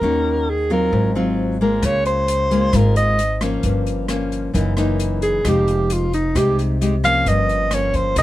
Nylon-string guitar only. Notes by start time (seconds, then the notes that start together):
0.03 D#3 A#3 C#4 F#4
0.70 F#3 C4 F4
0.93 G#2
1.15 F#3 C4 F4
1.61 G#3 A#3 F4
1.83 C#3
2.51 G#3 A#3 F4
2.73 G#2 G#3 A#3 F4
3.41 F3 A#3 C#4
3.64 G2
4.09 F3 A#3 C#4
4.53 F#2 E3 A#3 D#4
4.77 E3 A#3 D#4
5.45 F3 G#3 D#4 G4
6.35 C3 G#3 D#4 G4
6.81 G#3 D#4 G4
7.03 F3 A#3 C#4
7.27 G2
7.72 F3 A#3 C#4
8.17 C3 A#3 E4 G#4